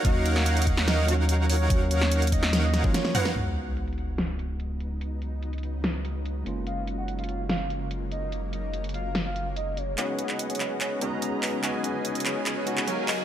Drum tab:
HH |x---x---x-xxx---x---x---x---o---|x---x---x-xxx---x---x---x---o---|x---x---x-xxx---x---x---x---x---|x---x---x-xxx---x---x---x---x---|
CP |--------------------------------|--------------------------------|--------------------------------|--------------------------------|
SD |------o-------o-o---------------|------o-------o-o---o---o-o---o-|----------------o---------------|----------------o---------------|
T1 |--------------------------------|----------------------o---------|--------------------------------|--------------------------------|
T2 |--------------------------------|----------------------------o---|--------------------------------|--------------------------------|
BD |o-----------o-------------------|o-----------o---------o---------|--------------------------------|--------------------------------|

HH |x---x---x-xxx---x---x---x---x---|x---x---x-xxx---x---x---x---x---|x---x---x-xxx---x---x---x---o---|x---x---x-xxx---x---x---x---o---|
CP |--------------------------------|--------------------------------|x-----x-----x---x-----------x---|x-----------x---x-----x-----x---|
SD |----------------o---------------|----------------o---------------|--------------------------------|--------------------------------|
T1 |--------------------------------|--------------------------------|--------------------------------|--------------------------------|
T2 |--------------------------------|--------------------------------|--------------------------------|--------------------------------|
BD |--------------------------------|--------------------------------|--------------------------------|--------------------------------|